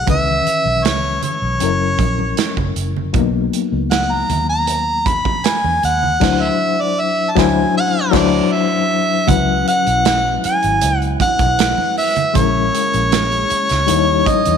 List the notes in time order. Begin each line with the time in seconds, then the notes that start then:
0.06 C#2 D#3 E3 C#4 B4 E5, kick, closed hi-hat, muted conga, low conga
0.47 muted fingered electric bass stroke, closed hi-hat
0.65 B1
0.84 C#2 C#5, snare, closed hi-hat, muted conga
1.22 C#5, closed hi-hat, low conga
1.42 B1
1.60 F#1 F#3 C#4 E4 A#4, closed hi-hat, muted conga
1.99 A#1, kick, closed hi-hat, muted conga, high conga
2.19 high conga
2.37 snare, closed hi-hat
2.57 F#1, kick, high conga
2.76 F#1, closed hi-hat
2.97 low conga
3.13 B1 F#3 A#3 B3 D#4, kick, closed hi-hat, low conga
3.53 closed hi-hat
3.72 C#2
3.91 F#5, snare, closed hi-hat
4.12 A#5
4.30 D#2, closed hi-hat, muted conga, low conga
4.50 A#5
4.67 closed hi-hat, muted conga
5.06 B5, kick, closed hi-hat, muted conga, high conga
5.25 kick, high conga
5.44 G#5, snare, closed hi-hat, muted conga
5.64 E2, high conga
5.83 D#2 F#5, closed hi-hat, muted conga
6.02 low conga
6.20 D2 F#3 D4 E4 C5, kick, snare, crash
6.42 E5
6.81 D5
7.00 E5
7.31 A5
7.35 D2 F#3 D4 E4 C5, kick, snare
7.40 G#5
7.77 F#5
8.01 E5
8.11 D2 F#3 D4 E4 C5 D5, kick, snare, crash
8.53 E5
9.27 C#2 E3 F#3 B3 C#4 E4 B4 F#5, kick, closed hi-hat, muted conga, low conga
9.68 F#5, closed hi-hat
9.87 B1, closed hi-hat
10.05 snare, closed hi-hat
10.44 G#5, muted fingered electric bass stroke, closed hi-hat, muted conga
10.63 G#1, closed hi-hat
10.81 C#2, closed hi-hat, muted conga
11.02 closed hi-hat
11.20 F#5, kick, closed hi-hat, muted conga, high conga
11.39 B1, kick, closed hi-hat, high conga
11.58 snare, closed hi-hat, muted conga
11.78 high conga
11.97 E5, open hi-hat, muted conga
12.16 closed hi-hat, low conga
12.33 A#1 C#3 G#3 A#3 C#4 E4 A#4 C#5, kick, closed hi-hat, low conga
12.75 closed hi-hat, muted conga
12.94 A#1, closed hi-hat
13.11 snare, closed hi-hat, muted conga
13.32 closed hi-hat
13.50 muted fingered electric bass stroke, closed hi-hat, muted conga
13.69 C#2, snare, closed hi-hat
13.87 D#2 D#3 G3 C#4 D#4 E4 C#5, closed hi-hat, muted conga
14.26 D#5, kick, closed hi-hat, muted conga, high conga
14.45 E2, closed hi-hat, high conga